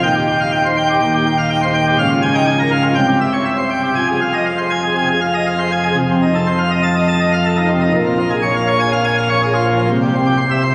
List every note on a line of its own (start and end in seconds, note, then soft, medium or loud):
0.03 1.00 D#1 medium
0.03 1.00 D#2 medium
0.03 0.14 G5 loud
0.16 0.27 G4 medium
0.28 0.39 G5 medium
0.40 0.51 F5 medium
0.52 0.63 G5 medium
0.66 0.76 C5 medium
0.77 0.88 G5 medium
0.90 1.00 G4 medium
1.02 1.96 D#1 medium
1.02 1.96 D#2 medium
1.02 1.12 G5 medium
1.15 1.25 G4 medium
1.26 1.37 G5 medium
1.38 1.48 F5 medium
1.50 1.61 G5 medium
1.63 1.73 C5 medium
1.75 1.85 G5 loud
1.87 1.97 G4 medium
1.99 2.93 C#1 loud
1.99 2.93 C#2 loud
1.99 2.09 F5 medium
2.11 2.21 F4 medium
2.22 2.33 G#5 loud
2.35 2.45 D#4 medium
2.35 2.45 G5 medium
2.47 2.58 G#5 medium
2.59 2.70 A#4 medium
2.71 2.82 F5 medium
2.83 2.94 F4 medium
2.95 3.92 C1 loud
2.95 3.92 C2 medium
2.95 3.06 G5 loud
3.08 3.19 G4 medium
3.21 3.32 E5 medium
3.33 3.44 C#5 medium
3.45 3.56 E5 medium
3.58 3.69 C5 medium
3.71 3.82 G5 medium
3.83 3.94 G4 medium
3.96 5.94 F1 medium
3.96 5.94 F2 medium
3.96 4.07 G#5 medium
4.08 4.19 G#4 medium
4.21 4.32 F5 medium
4.34 4.44 D#5 medium
4.46 4.57 F5 medium
4.58 4.70 C5 medium
4.70 4.82 G#5 medium
4.83 4.95 G#4 medium
4.95 5.07 C3 medium
4.95 5.08 G#5 medium
5.08 5.20 G#4 soft
5.21 5.33 F5 medium
5.34 5.45 D#5 soft
5.47 5.58 F5 medium
5.59 5.71 C5 medium
5.72 5.83 G#5 medium
5.85 5.96 G#4 soft
5.97 7.90 F1 medium
5.97 7.90 F2 medium
6.10 6.21 C3 medium
6.22 6.34 D#4 medium
6.35 6.46 A4 medium
6.47 6.58 C5 medium
6.58 6.70 F5 medium
6.71 6.82 D#5 medium
6.83 6.94 A5 medium
6.96 7.07 D#5 medium
7.08 7.19 A5 medium
7.20 7.31 D#5 medium
7.33 7.44 F5 medium
7.45 7.56 A4 medium
7.57 7.68 D#4 medium
7.69 7.80 C3 medium
7.81 7.92 D#4 medium
7.94 9.86 A#1 medium
7.94 9.86 A#2 medium
8.06 8.17 F3 medium
8.19 8.30 F4 medium
8.31 8.42 G#4 medium
8.42 8.54 C#5 medium
8.55 8.67 F5 medium
8.67 8.79 C#5 medium
8.80 8.91 G#5 medium
8.92 9.03 F5 medium
9.04 9.16 G#5 medium
9.17 9.28 F5 medium
9.29 9.40 C#5 medium
9.42 9.53 G#4 medium
9.54 9.65 F4 medium
9.66 9.77 F3 medium
9.79 9.89 F4 medium
9.90 10.75 C2 medium
9.90 10.75 C3 medium
10.03 10.13 G3 medium
10.15 10.26 C4 medium
10.26 10.37 G4 medium
10.38 10.49 C5 medium
10.51 10.62 E5 medium
10.63 10.74 C5 medium